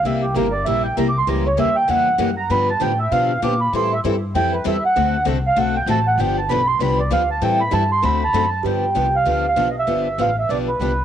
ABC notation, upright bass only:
X:1
M:4/4
L:1/8
Q:"Swing" 1/4=195
K:Gmix
V:1 name="Upright bass" clef=bass
C,,2 G,,,2 _B,,,2 C,,2 | ^C,,2 _E,,2 =E,,2 ^F,,2 | G,,2 A,,2 B,,2 _B,,2 | A,,2 G,,2 F,,2 E,, z |
D,,2 C,,2 B,,,2 A,,,2 | G,,,2 B,,,2 C,,2 D,,2 | A,,2 G,,2 D,,2 ^F,,2 | G,,2 C,,2 D,,2 B,,,2 |
G,,,2 A,,,2 B,,,2 C,,2 |]